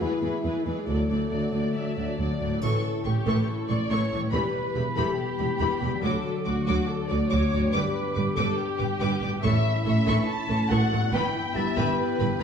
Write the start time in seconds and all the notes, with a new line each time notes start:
Already playing: E3 E4 B4
0.00 E2 E3 G#3 E4 G#4 B4
0.22 E2 E3 E4 G#4 B4
0.44 E2 E3 G#4 B4
0.65 E2 E3 G#3 E4 G#4 B4
0.87 D2 D3 F#3 A3 A4 D5
1.09 D2 F#3 A3 A4 D5
1.30 D2 F#3 F#4 D5
1.53 D2 F#3 A3 D5
1.75 D2 F#3 D4 D5 E5
1.97 D2 F#3 A3 D5
2.18 D2 F#3 F#4 D5
2.40 D2 A2 F#3 A3 D5
2.48 A3
2.53 E4
2.57 C#4 E4 C#5
2.62 A1 A2 E3 E4 A4 C#6, triangle
3.05 A1 A2 E3 G4 A4 C#6
3.26 A1 A2 E3 A4 C#6
3.48 A4
3.69 A1 A2 E3 A4 D5 C#6
3.90 A1 A2 E3 A4 C#5 C#6
4.12 A1 A2 E3 A4 C#6
4.20 G3
4.25 E4
4.29 E2 E3 B3 G4 B4 B5
4.33 E1 G4 B5
4.75 E1 E2 E3 G4 B5
4.96 E1 E2 E3 G4 A4 B5
5.18 G4
5.39 E1 E2 E3 G4 B5
5.60 E1 E2 E3 G4 B5
5.82 E1 E2 E3 G4 B5
5.86 D3
5.91 F#3
5.95 F#4
5.99 F#3 D4 F#4
6.04 D2 F#4 A4 D6
6.46 D2 F#3 F#4 D6
6.67 D2 F#3 F#4 D6
6.87 A4
7.09 D2 F#3 F#4 D5 D6
7.30 D2 F#3 F#4 C#5 D6
7.52 D2 F#3 F#4 D6
7.56 G2
7.60 B3
7.65 G4
7.69 G4 D5 D6
7.73 G1 G2 G3 G4 B4
8.15 G1 G2 G3 B4 D6
8.36 G1 G2 G3 A4 B4 D6
8.57 G4
8.78 G1 G2 G3 B4 D6
9.00 G1 G2 G3 B4 D6
9.21 G1 G2 A2 G3 B4 D6
9.29 A3
9.34 E4
9.38 C#5
9.42 A1 A2 E3 C#4 E4 A4 E5 B5 C#6
9.85 A1 A2 E3 C#4 A4 E5 C#6
10.06 A1 A2 E3 D4 A4 C#6
10.28 E4 A5
10.48 A1 A2 E3 C#4 A4 C#6
10.70 A1 A2 E3 F#4 A4 F#5 A5 C#6
10.91 A1 G2 A2 E3 A4 C#6
10.99 B3
11.04 E4
11.08 E4 B4
11.13 G1 G2 E3 B3 B4 G5 B5
11.33 E4
11.54 G1 G2 E3 G4 B4 E5 A5 B5
11.77 G1 G2 E3 B4 G5 B5
11.99 B4
12.19 G1 G2 E3 B4 B5